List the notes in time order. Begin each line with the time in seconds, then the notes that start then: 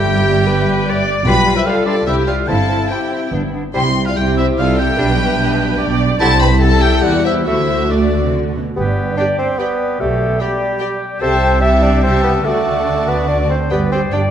Already playing: G1 G2 G3 G4 E5 G5
0.04 G4
0.45 B4
0.85 D5
1.25 B1 B2 G3 F4 B4 G5 B5
1.46 G3 F4
1.55 E4 C5 E5
1.66 G3 F4 A4 D5 F5
1.86 G3 D4 F4 B4 D5
2.06 C2 C3 G3 E4 G4 C5 E5
2.27 G3 E4 F4 D5 F5
2.48 G1 G2 C4 E4 A4 F5 A5
2.69 C4 E4
2.90 C4 E4 G4 E5 G5
3.11 C4 E4
3.32 G1 G2 B3 D4
3.54 B3 D4
3.74 C2 C3 G3 E4 C5 G5 C6
4.06 F4 D5 F5
4.16 C2 C3 G4 E5 G5
4.37 E4 C5 E5
4.57 C2 C3 F4 A4 D5 F5
4.79 G4 E5 G5
4.98 B1 B2 G3 D4 B4
5.39 B1 B2
5.80 B1 B2 D5
6.20 C2 C3 G3 E4 A4 C5 F#5 A5
6.40 B4 G5 B5
6.60 A4 F#5 A5
6.81 G4 E5 G5
7.03 E2 E3 F#4 G4 D5 F#5
7.24 E4 C5 E5
7.46 D2 D3 A3 E4 F#4 C5 E5
7.89 A3 D4 A4 D5
8.23 C3
8.33 D3
8.55 B2
8.75 G1 G2 B3 G4 B4 D5
9.17 D4 G4 D5 G5
9.38 C4 C5
9.58 B3 G4 B4 D5 G5
9.99 B1 B2 A3 G4 A4 D5
10.39 G3 G4 D5 G5
10.80 G4 D5 G5
11.20 C2 C3 C4 G4 A4 C5 E5 G5 A5
11.61 E4 G4 A4 E5 G5 A5
11.81 D4 D5
12.02 C4 G4 A4 C5 E5 G5 A5
12.23 B3 B4
12.44 D2 D3 A3 F#4 A4 D5 F#5 A5
13.08 B3 B4
13.28 D4 D5
13.50 C4 C5
13.70 G1 G2 B3 G4 B4 D5 G5
13.92 C4 G4 C5 D5 G5
14.12 G1 G2 D4 G4 D5 G5